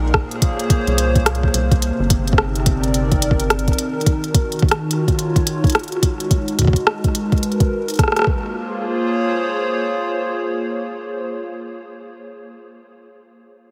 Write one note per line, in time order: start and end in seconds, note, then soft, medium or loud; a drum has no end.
0.00 0.23 A#1 loud
0.00 1.54 A#2 medium
0.00 2.45 A#3 medium
0.00 0.21 D#4 medium
0.00 0.21 A#4 medium
0.05 1.54 G#4 medium
0.14 2.45 C5 medium
0.14 kick loud
0.14 cross-stick loud
0.31 1.54 C#5 medium
0.31 closed hi-hat soft
0.42 kick loud
0.42 closed hi-hat medium
0.59 closed hi-hat soft
0.70 kick loud
0.70 closed hi-hat medium
0.87 1.49 C2 medium
0.87 closed hi-hat soft
0.98 closed hi-hat medium
1.15 kick loud
1.15 closed hi-hat soft
1.26 cross-stick loud
1.26 closed hi-hat medium
1.35 closed hi-hat soft
1.43 kick medium
1.54 1.91 C2 medium
1.54 3.78 C3 medium
1.54 closed hi-hat medium
1.71 kick loud
1.71 closed hi-hat soft
1.81 3.78 C4 medium
1.81 closed hi-hat medium
1.99 3.73 G1 medium
2.09 8.27 D#4 medium
2.09 kick loud
2.09 closed hi-hat loud
2.27 closed hi-hat soft
2.33 kick loud
2.38 cross-stick loud
2.56 4.69 A#4 medium
2.56 3.78 D5 medium
2.56 closed hi-hat soft
2.66 kick loud
2.66 closed hi-hat medium
2.84 closed hi-hat soft
2.94 closed hi-hat medium
3.12 kick loud
3.12 closed hi-hat soft
3.22 closed hi-hat medium
3.31 kick loud
3.40 closed hi-hat soft
3.50 cross-stick loud
3.50 closed hi-hat medium
3.59 closed hi-hat soft
3.68 kick loud
3.68 closed hi-hat soft
3.73 closed hi-hat soft
3.78 6.03 D#3 medium
3.78 closed hi-hat medium
4.01 closed hi-hat soft
4.06 8.27 F#4 medium
4.06 kick loud
4.06 closed hi-hat medium
4.24 closed hi-hat soft
4.34 kick loud
4.34 closed hi-hat medium
4.52 closed hi-hat soft
4.59 kick loud
4.59 closed hi-hat soft
4.67 6.03 F4 medium
4.67 closed hi-hat soft
4.71 cross-stick loud
4.71 closed hi-hat soft
4.82 6.83 C#5 medium
4.91 closed hi-hat medium
5.08 kick loud
5.08 closed hi-hat soft
5.19 closed hi-hat medium
5.36 kick loud
5.36 closed hi-hat soft
5.47 closed hi-hat medium
5.64 kick loud
5.64 closed hi-hat soft
5.67 closed hi-hat soft
5.70 closed hi-hat medium
5.72 cross-stick loud
5.72 closed hi-hat soft
5.75 closed hi-hat soft
5.79 closed hi-hat soft
5.83 closed hi-hat soft
5.88 closed hi-hat soft
5.92 closed hi-hat soft
6.03 8.27 G#3 medium
6.03 kick loud
6.03 closed hi-hat medium
6.20 closed hi-hat soft
6.31 kick loud
6.31 closed hi-hat medium
6.48 closed hi-hat soft
6.59 kick medium
6.59 closed hi-hat medium
6.62 kick medium
6.65 kick medium
6.67 kick medium
6.73 kick loud
6.73 closed hi-hat soft
6.87 cross-stick loud
7.04 8.27 A#4 medium
7.04 8.27 B4 medium
7.04 kick loud
7.04 closed hi-hat soft
7.15 closed hi-hat medium
7.32 kick medium
7.32 closed hi-hat soft
7.38 closed hi-hat soft
7.43 closed hi-hat medium
7.52 closed hi-hat soft
7.60 kick loud
7.60 closed hi-hat soft
7.88 closed hi-hat soft
7.90 closed hi-hat soft
7.94 closed hi-hat soft
7.96 closed hi-hat soft
7.97 kick loud
7.97 cross-stick soft
7.97 closed hi-hat soft
7.99 closed hi-hat medium
8.03 cross-stick medium
8.08 cross-stick medium
8.12 cross-stick medium
8.16 cross-stick medium
8.16 closed hi-hat soft
8.19 cross-stick medium
8.22 cross-stick medium
8.24 11.27 A#3 medium
8.24 kick loud
8.24 cross-stick loud
8.37 11.27 F4 medium
8.46 11.27 G#4 medium
8.53 11.27 C5 medium
8.62 11.27 C#5 medium